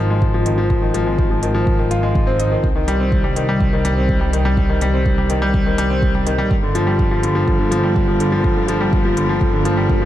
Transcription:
Already playing: G#1 D#3 F3 G#3 C4 F4 C5
0.10 G#3
0.22 kick
0.34 F3
0.46 D#3, closed hi-hat
0.58 F3
0.70 kick
0.82 D#3
0.94 F3, closed hi-hat
1.06 G#3
1.19 kick
1.30 F3
1.43 D#3, closed hi-hat
1.55 F3
1.67 kick
1.79 D#3
1.91 F4, closed hi-hat
2.03 G#3
2.15 kick
2.27 C4
2.39 D#4, closed hi-hat
2.52 D#3
2.64 C2 G3 C4 G4, kick
2.76 D#3
2.88 G3, closed hi-hat
3.00 C4
3.12 kick
3.24 G3
3.36 D#3, closed hi-hat
3.49 G3
3.60 kick
3.73 D#3
3.85 G3, closed hi-hat
3.97 C4
4.09 kick
4.21 G3
4.33 D#3, closed hi-hat
4.45 G3
4.57 kick
4.69 D#3
4.81 G3, closed hi-hat
4.94 C4
5.06 kick
5.18 G3
5.30 D#3, closed hi-hat
5.42 G3
5.54 kick
5.66 D#3
5.78 G3, closed hi-hat
5.90 C4
6.02 kick
6.15 G3
6.27 D#3, closed hi-hat
6.38 G3
6.51 G1 D3 A#3 F4 A#4, kick
6.63 D3
6.75 F3, closed hi-hat
6.87 G3
6.99 kick
7.11 F3
7.23 D3, closed hi-hat
7.35 F3
7.48 kick
7.59 D3
7.71 F3, closed hi-hat
7.84 G3
7.96 kick
8.08 F3
8.20 D3, closed hi-hat
8.32 F3
8.44 kick
8.56 D3
8.68 F3, closed hi-hat
8.81 G3
8.93 kick
9.05 F3
9.17 D3, closed hi-hat
9.29 F3
9.41 kick, swell
9.53 D3
9.65 F3, closed hi-hat
9.77 G3
9.89 kick
10.02 F3

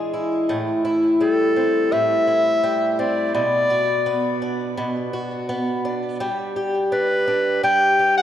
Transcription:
Already playing: E3 G#3 D4 G#4
0.14 E4
0.49 A2
0.85 E4
1.20 G3 A4
1.56 C4
1.92 A2 E5
2.27 E4
2.63 G3
2.92 E5
2.99 C4 D5
3.34 B2 D5
3.70 F#4
4.06 B3
4.42 D4
4.77 B2
5.13 F#4
5.49 B3
5.85 D4
6.20 G3
6.56 G4
6.92 D4 B4
7.27 D4
7.63 G3 G5
7.99 G4
8.17 F#5

